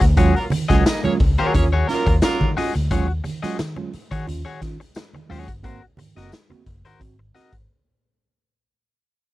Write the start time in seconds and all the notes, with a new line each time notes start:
0.01 D2, muted clean electric guitar stroke, kick, closed hi-hat
0.17 D#2 F#3 G#3 C#4 F4 F#4 G#4 C#5, kick, closed hi-hat, muted conga, low conga
0.35 F#3 A#3 F4 A#4, muted clean electric guitar stroke, closed hi-hat
0.50 D#3, muted clean electric guitar stroke, closed hi-hat, muted conga, high conga
0.68 C#2 F#3 G#3 A#3 C#4 F4 F#4 G#4 C#5 D#5, kick, snare, closed hi-hat
0.86 A#3 D#4 G#4 D#5, muted clean electric guitar stroke, snare, closed hi-hat, tambourine
1.04 F#3 G#3 A#3 C#4 F4 G#4 C#5, muted clean electric guitar stroke, muted fingered electric bass stroke, closed hi-hat, high conga
1.19 C#2, kick, open hi-hat, muted conga
1.38 D#3 F#3 A#3 F4 F#4 G#4 A#4 C#5, closed hi-hat
1.54 D#2 A#3 C#4 F4 G#4 C#5, muted clean electric guitar stroke, kick, closed hi-hat, muted conga, high conga
1.73 D#3 F#4 G#4 C#5
1.87 F#3 A#3 C#4 F4 A#4, muted clean electric guitar stroke, snare, closed hi-hat
2.06 D#2, muted clean electric guitar stroke, kick, closed hi-hat
2.22 F#3 A#3 C#4 F4 A#4, muted clean electric guitar stroke, snare, closed hi-hat, tambourine
2.41 D#3, kick, high conga
2.57 C#4 F4 F#4 G#4 D#5, snare, open hi-hat, muted conga, low conga
2.75 D2, muted clean electric guitar stroke, closed hi-hat
2.91 D#2 F#3 G#3 C#4 F4 F#4 G#4 C#5, kick, closed hi-hat, muted conga, low conga
3.08 muted clean electric guitar stroke
3.24 D#3, muted clean electric guitar stroke, closed hi-hat, muted conga, high conga
3.42 F#3 G#3 C#4 F4 F#4 G#4 D#5, muted fingered electric bass stroke, snare, closed hi-hat
3.58 D#3, muted clean electric guitar stroke, snare, closed hi-hat, tambourine, muted conga
3.76 F#3 G#3 C#4 F4, muted clean electric guitar stroke, high conga
3.93 muted fingered electric bass stroke, closed hi-hat, muted conga
4.11 D#3 F#4 G#4 C#5, kick, closed hi-hat
4.27 D#2 C#4 F4, muted clean electric guitar stroke, closed hi-hat, muted conga, high conga
4.45 D#3 F#4 G#4 C#5, closed hi-hat
4.62 D#3 C#4 F4, muted clean electric guitar stroke, kick, snare, closed hi-hat
4.80 muted clean electric guitar stroke, closed hi-hat
4.95 C#4 F4, muted clean electric guitar stroke, snare, closed hi-hat, tambourine, muted conga
5.14 D#3, muted clean electric guitar stroke, closed hi-hat, high conga
5.29 D#2 F#3 G#3 C#4 F4 F#4 G#4 C#5, snare, open hi-hat, muted conga, low conga
5.48 G1, muted clean electric guitar stroke, kick, closed hi-hat
5.63 G#1 A#3 C4 F#4 A#4 C5, kick, closed hi-hat, muted conga, low conga
5.82 muted clean electric guitar stroke
5.97 G#2 D#3, muted clean electric guitar stroke, closed hi-hat, muted conga, high conga
6.15 F#1 A#3 C4 F#4 A#4 D#5, snare, closed hi-hat
6.32 muted clean electric guitar stroke, snare, closed hi-hat, tambourine, muted conga
6.50 A#3 C4 F#4, muted clean electric guitar stroke, muted fingered electric bass stroke, closed hi-hat, high conga
6.66 F#1, kick, closed hi-hat
6.84 G#2 D#3 F#4 A#4 C5, closed hi-hat
7.00 G#1 C4 F#4, muted clean electric guitar stroke, kick, closed hi-hat, muted conga, high conga
7.19 G#2 D#3, muted clean electric guitar stroke
7.34 C4 F#4 A#4 D#5, snare, closed hi-hat, muted conga
7.53 G#1, muted clean electric guitar stroke, kick, closed hi-hat